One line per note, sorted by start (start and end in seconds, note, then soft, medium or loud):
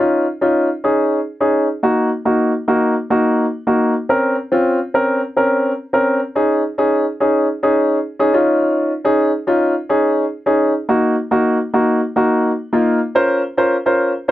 0.00 0.24 C#4 medium
0.00 0.25 D#4 medium
0.00 0.25 F4 medium
0.41 0.67 C#4 medium
0.41 0.67 D#4 medium
0.41 0.67 F4 medium
0.84 1.18 C#4 medium
0.84 1.18 D#4 medium
0.84 1.18 G#4 medium
1.41 1.66 C#4 medium
1.41 1.66 D#4 medium
1.41 1.66 G#4 medium
1.83 2.08 A#3 medium
1.83 2.09 D#4 medium
1.83 2.09 F#4 medium
2.25 2.51 A#3 medium
2.25 2.51 D#4 medium
2.25 2.51 F#4 medium
2.68 2.93 A#3 medium
2.68 2.93 D#4 medium
2.68 2.94 F#4 medium
3.10 3.44 A#3 medium
3.10 3.44 D#4 medium
3.10 3.44 F#4 medium
3.67 3.92 A#3 medium
3.67 3.92 D#4 medium
3.67 3.93 F#4 medium
4.09 4.35 C4 medium
4.09 4.35 C#4 medium
4.09 4.35 A#4 medium
4.52 4.77 C4 medium
4.52 4.77 C#4 medium
4.52 4.77 F4 medium
4.94 5.20 C4 medium
4.94 5.20 C#4 medium
4.94 5.20 A#4 medium
5.37 5.71 C4 medium
5.37 5.71 C#4 medium
5.37 5.71 A#4 medium
5.93 6.19 C4 medium
5.93 6.19 C#4 medium
5.93 6.19 A#4 medium
6.35 6.61 C#4 medium
6.35 6.61 D#4 medium
6.35 6.61 G#4 medium
6.78 7.04 C#4 medium
6.78 7.04 D#4 medium
6.78 7.04 G#4 medium
7.20 7.46 C#4 medium
7.20 7.46 D#4 medium
7.20 7.46 G#4 medium
7.63 7.97 C#4 medium
7.63 7.97 D#4 medium
7.63 7.97 G#4 medium
8.19 8.32 C#4 medium
8.19 8.32 D#4 medium
8.19 8.34 G#4 medium
8.34 8.90 C#4 medium
8.34 8.91 D#4 medium
8.34 8.91 F4 medium
9.05 9.30 C#4 medium
9.05 9.30 D#4 medium
9.05 9.30 G#4 medium
9.47 9.73 C#4 medium
9.47 9.73 D#4 medium
9.47 9.73 F4 loud
9.89 10.23 C#4 medium
9.89 10.24 D#4 medium
9.89 10.24 G#4 medium
10.46 10.72 C#4 medium
10.46 10.72 D#4 medium
10.46 10.72 G#4 medium
10.89 11.14 A#3 medium
10.89 11.14 D#4 medium
10.89 11.14 F#4 medium
11.31 11.57 A#3 medium
11.31 11.57 D#4 medium
11.31 11.57 F#4 medium
11.74 11.99 A#3 medium
11.74 11.99 D#4 medium
11.74 11.99 F#4 medium
12.16 12.50 A#3 medium
12.16 12.50 D#4 medium
12.16 12.50 F#4 medium
12.73 12.98 A#3 medium
12.73 12.98 D#4 medium
12.73 12.98 F4 medium
13.15 13.41 C#4 medium
13.15 13.41 F4 medium
13.15 13.41 A#4 medium
13.15 13.41 C5 loud
13.57 13.75 C#4 medium
13.57 13.75 F4 medium
13.57 13.75 A#4 medium
13.57 13.75 C5 medium
13.86 14.11 C#4 medium
13.86 14.11 F4 medium
13.86 14.11 A#4 medium
13.86 14.12 C5 medium
14.28 14.31 C#4 medium